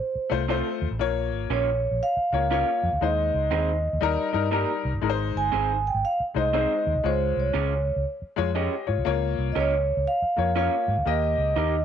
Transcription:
Already playing: C5
0.15 muted fingered electric bass stroke
0.29 C2 A3 F4 C5
0.48 A3 C4 F4 A4 C5
0.82 D#2
0.91 A1
0.99 A#1 A#3 F4 C#5
1.32 G#1
1.50 A#1 C#4 F4 A#4 C#5
1.91 A#1
2.03 F5
2.17 muted fingered electric bass stroke
2.32 C#2 A#3 F4 C#5
2.50 A#3 C#4 F4 A#4 C#5 F5
2.83 F2
2.93 D2
3.01 D#2 G#3 D#4 C5 D#5
3.34 C#2
3.51 D#2 C4 D#4 G#4 C5
3.93 D#2
4.01 D#2 G3 D#4 A#4
4.18 muted fingered electric bass stroke
4.32 G2 G3 D#4 A#4
4.51 G3 A#3 D#4 G4 A#4
4.85 C2
4.93 G1
5.01 G#1 G#3 D#4 A#4
5.10 C5
5.35 G1 G#5
5.52 G#1 C4 D#4 G#4 C5
5.87 G5
5.94 G#1
6.05 F5
6.20 muted fingered electric bass stroke
6.34 C2 G#3 D#4 C5 D#5
6.53 G#3 C4 D#4 G#4 C5
6.87 D#2
6.95 C2
7.04 C#2 G#3 F4 C5 C#5
7.37 C2 C#5
7.53 C#2 C#4 F4 G#4 C#5
7.96 C#2
8.22 muted fingered electric bass stroke
8.36 F2 G#3 F4 C#5
8.55 C#4 F4 G4 G#4 C#5 D#5
8.87 G#2 F4 C#5
8.98 C2
9.05 C#2 A#3 F4 C#5
9.38 C2
9.52 C#2 C#4 F4 A#4 D#5
9.57 C#5
9.97 C#2
10.07 F5
10.22 muted fingered electric bass stroke
10.36 F2 A#3 F4 C#5
10.55 A#3 C#4 F4 A#4 C#5
10.59 F5
10.88 G#2
10.97 D2
11.05 D#2 A#3 G4 D#5
11.38 C#2
11.56 D#2 D#4 G4 A#4 D#5

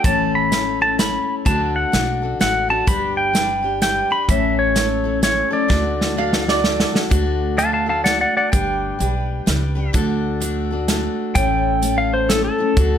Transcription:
0.04 A1 A2 E3 A3 C#4 E4 A4 A5, kick, closed hi-hat
0.35 B5
0.51 A3 C#4 E4 A4, snare, closed hi-hat
0.81 A3 E4 A4 A5
0.99 A3 C#4 E4 A4 B5, snare, closed hi-hat
1.45 D2 D3 A3 D4 F#4 A4 A5, kick, closed hi-hat
1.76 F#5
1.92 B1 A3 D4 F#4 A4, snare, closed hi-hat
2.22 D4 F#4 A4
2.39 A1 A3 D4 F#4 A4 F#5, snare, closed hi-hat
2.69 D4 F#4 A4 A5
2.87 G1 G3 D4 G4 B4 B5, kick, closed hi-hat
3.17 G5
3.34 G3 D4 G4 B4, snare, closed hi-hat
3.63 D4 G4 B4
3.81 G3 D4 G4 B4 G5, snare, closed hi-hat
4.10 D4 G4 B4 B5
4.28 A1 A2 E3 A3 C#4 E4 A4 E5, kick, closed hi-hat
4.59 C#5
4.75 A3 C#4 E4 A4, snare, closed hi-hat
5.04 A3 C#4 E4 A4
5.22 A3 C#4 E4 A4 C#5, snare, closed hi-hat
5.51 A3 C#4 E4 A4 D5
5.68 D2 D3 A3 D4 F#4 A4, kick, snare
6.01 snare
6.16 A3 D4 F#4 A4 F5
6.33 snare
6.45 D4 F#4 A4 D5, snare
6.63 A3 D4 F#4 A4, snare
6.80 snare
6.91 D4 F#4 A4
6.95 snare
7.10 D2 D3 A3 D4 F#4 A4, kick, closed hi-hat
7.57 A3 D4 F#4 A4 F5 A5, closed hi-hat
7.73 F5 A5
7.86 D4 F#4 A4 F5 A5
8.04 A3 D4 F#4 A4 D5 F#5, snare, closed hi-hat
8.21 D5 F#5
8.37 D5 F#5
8.52 G1 G3 D4 G4 B4 G5, kick, closed hi-hat
8.99 B1 G3 D4 G4 B4, closed hi-hat
9.46 C#2 G3 D4 G4 B4, snare, closed hi-hat
9.75 D4 G4 B4
9.93 D2 D3 A3 D4 F#4 A4, kick, closed hi-hat
10.40 A3 D4 F#4 A4, closed hi-hat
10.71 D4 F#4 A4
10.88 A3 D4 F#4 A4, snare, closed hi-hat
11.35 A1 A2 E3 A3 C#4 E4 A4 G5, kick, closed hi-hat
11.82 A3 C#4 E4 A4, closed hi-hat
11.98 F5
12.14 C5
12.29 A3 C#4 E4 A4, snare, closed hi-hat
12.44 A4
12.58 A3 C#4 E4 A4
12.77 D2 D3 A3 D4 F#4 A4, kick, closed hi-hat

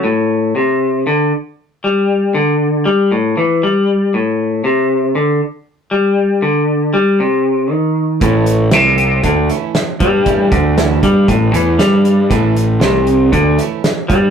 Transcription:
0.04 A2
0.56 C3
1.07 D3
1.84 G3
2.34 D3
2.85 G3
3.12 A2
3.37 E3
3.63 G3
4.14 A2
4.64 C3
5.15 D3
5.91 G3
6.42 D3
6.94 G3
7.20 C3
7.71 D#3
8.21 A1 A2 E3 A3 C#4 E4, kick, closed hi-hat
8.46 muted clean electric guitar stroke, closed hi-hat
8.71 C2 C3 E3 A3 C#4 E4, snare, closed hi-hat
8.97 muted clean electric guitar stroke, closed hi-hat
9.23 D2 D3, kick, closed hi-hat
9.49 E3 A3 C#4 E4, closed hi-hat
9.75 snare, closed hi-hat
10.00 G2 G3, kick, closed hi-hat
10.26 E3 A3 C#4 E4, kick, closed hi-hat
10.52 D2 D3, muted clean electric guitar stroke, kick, closed hi-hat
10.77 E3 A3 C#4 E4, snare, closed hi-hat
11.03 G2 G3, muted clean electric guitar stroke, kick, closed hi-hat
11.28 A1 A2, kick, closed hi-hat
11.53 E2 E3 A3 C#4 E4, closed hi-hat
11.79 G2 G3, muted clean electric guitar stroke, snare, closed hi-hat
12.05 muted clean electric guitar stroke, closed hi-hat
12.30 A1 A2 E3 A3 C#4 E4, kick, closed hi-hat
12.56 muted clean electric guitar stroke, closed hi-hat
12.81 C2 C3 E3 A3 C#4 E4, snare, closed hi-hat
13.07 closed hi-hat
13.32 D2 D3, kick, closed hi-hat
13.58 E3 A3 C#4 E4, closed hi-hat
13.84 muted clean electric guitar stroke, snare, closed hi-hat
14.08 G2 G3, muted clean electric guitar stroke, kick, closed hi-hat

